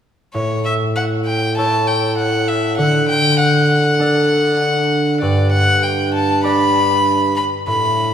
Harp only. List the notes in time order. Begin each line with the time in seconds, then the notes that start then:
0.34 A2
1.58 E4 A4 C#5
2.78 D3
3.99 D4 A4 D5
5.22 G2
6.44 D4 G4 D5
7.67 A2